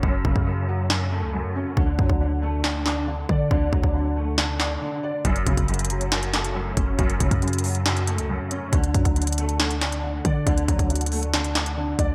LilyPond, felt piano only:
\new Staff \with { instrumentName = "Felt piano" } { \clef bass \time 4/4 \key d \lydian \tempo 4 = 138 <fis, a cis'>8 cis8 fis,8 fis8 fis,8 a8 fis,8 cis'8 | d8 fis8 d8 a8 d8 d'8 d8 d''8 | d8 fis8 d8 a8 d8 d'8 d8 d''8 | fis,8 cis8 fis,8 fis8 fis,8 a8 fis,8 cis'8 |
fis,8 cis8 fis,8 fis8 fis,8 a8 fis,8 cis'8 | d8 fis8 d8 a8 d8 d'8 d8 d''8 | d8 fis8 d8 a8 d8 d'8 d8 d''8 | }